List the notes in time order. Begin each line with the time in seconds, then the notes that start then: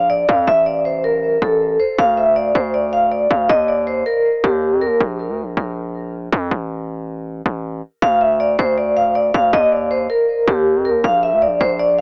Already playing: A#1
0.10 D5
0.29 F2 F5
0.47 A1 E5
0.66 D5
0.85 C5
1.04 A#4
1.42 A1 A4
1.80 C5
1.98 D2 F5
2.17 E5
2.36 D5
2.55 D2 C5
2.74 D5
2.93 F5
3.12 D5
3.30 D2 F5
3.49 D#2 D#5
3.68 D5
3.87 C5
4.06 A#4
4.44 D#2 G4
4.72 F2
4.81 A#4
4.86 D#2
5.00 A#1
5.29 D2
5.43 A#1
5.57 A#1
6.32 F2
6.51 A1
7.46 A1
8.02 D2 F5
8.21 E5
8.40 D5
8.59 D2 C5
8.78 D5
8.97 F5
9.15 D5
9.34 D2 F5
9.53 D#2 D#5
9.72 D5
9.91 C5
10.10 A#4
10.48 D#2 G4
10.76 F2
10.85 A#4
10.90 D#2
11.04 A#1 F5
11.23 E5
11.32 D2
11.42 D5
11.47 A#1
11.61 A#1 C5
11.80 D5